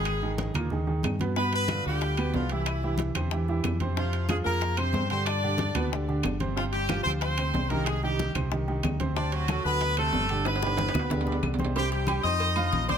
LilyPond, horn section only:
\new Staff \with { instrumentName = "Horn section" } { \time 4/4 \key c \minor \tempo 4 = 185 <aes aes'>4 r2. | <b b'>8 <b b'>4 <g g'>4. <f f'>8 <e e'>8~ | <e e'>4 r2. | <f f'>4 <aes aes'>8 <bes bes'>4 <c' c''>4 <c' c''>8 |
<d' d''>2 r2 | <f f'>8 <g g'>4 <c' c''>8 <c' c''>4. <bes bes'>8 | <aes aes'>8 <g g'>4 r2 r8 | <d' d''>8 <fis fis'>4 <b b'>4 <a a'>4. |
<b b'>2. r4 | <g g'>8 <g g'>4 <ees' ees''>2 <c' c''>8 | }